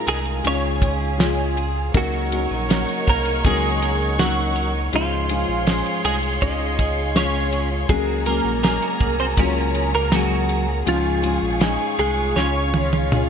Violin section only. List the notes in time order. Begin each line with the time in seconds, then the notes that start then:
Already playing: A#4 A#5
0.43 G#4 G#5
1.93 C#5 C#6
4.93 C#5 C6
7.89 A#4 A#5
10.86 G#4 G#5
12.75 F4 F5